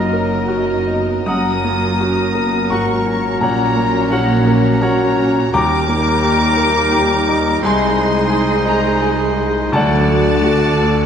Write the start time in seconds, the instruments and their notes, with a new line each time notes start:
Already playing: double bass section F#1, grand piano F#2 A#3 F#4 A#4 D#5 F#5, cello section F#2, bassoon F#3, french horn section F#3 A#3, viola section A#3 F4, clarinet D#4, oboe A#4, violin section A#4 D#5, flute section A#5
0.13 viola section F#4, grand piano A#4
0.48 viola section C#4, grand piano F#4
0.87 viola section B3, grand piano D#4
1.26 double bass section F#1, grand piano F#2 F#5 A#5 D#6, cello section F#2, bassoon F#3, french horn section F#3 A#3, viola section A#3 F#4, clarinet C#4, violin section A#4 D#6, oboe A#4, flute section A#5
1.65 grand piano A#3, viola section F4
2.00 viola section C#4 F#4, grand piano F#4
2.35 viola section B3, grand piano A#4
2.70 double bass section G#1, cello section G#2, viola section A#3, grand piano F#4 F#5 A#5 C#6, violin section C#6
3.07 grand piano C#4
3.40 double bass section A#1, grand piano A#2 C#5 F#5 A#5, cello section A#2, viola section A#3 F#4, french horn section C#4, violin section C#5 A#5
3.76 grand piano A#3, viola section F4
4.10 viola section D#4, grand piano F#4 A#4 C#5 F#5, violin section F#5
4.47 viola section C#4, grand piano A#4
4.81 viola section C#4 F#4, grand piano F#4 C#5 F#5 A#5, violin section C#5 A#5
5.17 grand piano C#4
5.53 grand piano D#2 G5 A#5 D6, double bass section D#2, cello section D#2, bassoon G3, french horn section G3 D#4, viola section A#3 G4, clarinet D#4, oboe A#4, violin section A#4 D6, flute section A#5
5.89 grand piano A#3
6.23 grand piano G4
6.57 grand piano A#4
6.92 grand piano G4
7.28 grand piano D#4
7.63 grand piano C2 D#5 G#5 C6, cello section C2, double bass section C2, bassoon G#3, viola section G#3 G#4, french horn section G#3 D#4, clarinet D#4, oboe C5, violin section D#5 C6, flute section G#5
7.97 grand piano G#3
8.30 grand piano G#4
8.65 grand piano D#4 A#5, violin section A#5
9.02 grand piano G#4
9.37 grand piano D#4
9.72 grand piano D2 D5 F#5 A5, cello section D2, double bass section D2, french horn section F#3 D4, viola section A3 F#4, bassoon A3, clarinet D4, oboe D5, violin section D5 A5, flute section F#5
10.08 grand piano A3
10.44 french horn section A3, grand piano F#4
10.83 grand piano A4